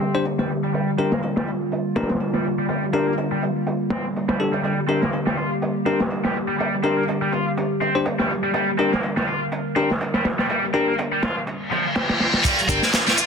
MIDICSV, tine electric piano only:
0, 0, Header, 1, 2, 480
1, 0, Start_track
1, 0, Key_signature, -2, "minor"
1, 0, Tempo, 487805
1, 729, Time_signature, 4, 2, 24, 8
1, 13049, End_track
2, 0, Start_track
2, 0, Title_t, "Tine electric piano"
2, 0, Program_c, 0, 4
2, 144, Note_on_c, 0, 67, 72
2, 145, Note_on_c, 0, 62, 75
2, 145, Note_on_c, 0, 72, 88
2, 239, Note_off_c, 0, 62, 0
2, 239, Note_off_c, 0, 67, 0
2, 239, Note_off_c, 0, 72, 0
2, 968, Note_on_c, 0, 62, 72
2, 968, Note_on_c, 0, 67, 70
2, 969, Note_on_c, 0, 70, 83
2, 1092, Note_off_c, 0, 62, 0
2, 1092, Note_off_c, 0, 67, 0
2, 1093, Note_off_c, 0, 70, 0
2, 1929, Note_on_c, 0, 70, 97
2, 1930, Note_on_c, 0, 62, 84
2, 1930, Note_on_c, 0, 67, 74
2, 2053, Note_off_c, 0, 62, 0
2, 2053, Note_off_c, 0, 67, 0
2, 2053, Note_off_c, 0, 70, 0
2, 2887, Note_on_c, 0, 70, 96
2, 2888, Note_on_c, 0, 62, 86
2, 2889, Note_on_c, 0, 67, 80
2, 3071, Note_off_c, 0, 70, 0
2, 3072, Note_off_c, 0, 62, 0
2, 3072, Note_off_c, 0, 67, 0
2, 4328, Note_on_c, 0, 62, 74
2, 4328, Note_on_c, 0, 67, 70
2, 4328, Note_on_c, 0, 69, 82
2, 4452, Note_off_c, 0, 62, 0
2, 4452, Note_off_c, 0, 67, 0
2, 4452, Note_off_c, 0, 69, 0
2, 4807, Note_on_c, 0, 62, 75
2, 4807, Note_on_c, 0, 67, 70
2, 4808, Note_on_c, 0, 70, 80
2, 4932, Note_off_c, 0, 62, 0
2, 4932, Note_off_c, 0, 67, 0
2, 4932, Note_off_c, 0, 70, 0
2, 5768, Note_on_c, 0, 62, 80
2, 5769, Note_on_c, 0, 67, 75
2, 5769, Note_on_c, 0, 70, 91
2, 5892, Note_off_c, 0, 62, 0
2, 5892, Note_off_c, 0, 67, 0
2, 5892, Note_off_c, 0, 70, 0
2, 6726, Note_on_c, 0, 62, 83
2, 6727, Note_on_c, 0, 67, 77
2, 6727, Note_on_c, 0, 70, 94
2, 6911, Note_off_c, 0, 62, 0
2, 6911, Note_off_c, 0, 67, 0
2, 6911, Note_off_c, 0, 70, 0
2, 7823, Note_on_c, 0, 67, 72
2, 7823, Note_on_c, 0, 72, 82
2, 7824, Note_on_c, 0, 62, 80
2, 7919, Note_off_c, 0, 62, 0
2, 7919, Note_off_c, 0, 67, 0
2, 7919, Note_off_c, 0, 72, 0
2, 8649, Note_on_c, 0, 62, 75
2, 8649, Note_on_c, 0, 67, 70
2, 8649, Note_on_c, 0, 70, 83
2, 8773, Note_off_c, 0, 62, 0
2, 8773, Note_off_c, 0, 67, 0
2, 8773, Note_off_c, 0, 70, 0
2, 9605, Note_on_c, 0, 62, 86
2, 9605, Note_on_c, 0, 70, 93
2, 9606, Note_on_c, 0, 67, 77
2, 9730, Note_off_c, 0, 70, 0
2, 9731, Note_off_c, 0, 62, 0
2, 9731, Note_off_c, 0, 67, 0
2, 10566, Note_on_c, 0, 62, 90
2, 10566, Note_on_c, 0, 67, 82
2, 10567, Note_on_c, 0, 70, 98
2, 10750, Note_off_c, 0, 67, 0
2, 10751, Note_off_c, 0, 62, 0
2, 10751, Note_off_c, 0, 70, 0
2, 12488, Note_on_c, 0, 62, 83
2, 12488, Note_on_c, 0, 70, 84
2, 12489, Note_on_c, 0, 67, 73
2, 12612, Note_off_c, 0, 62, 0
2, 12612, Note_off_c, 0, 70, 0
2, 12613, Note_off_c, 0, 67, 0
2, 13049, End_track
0, 0, End_of_file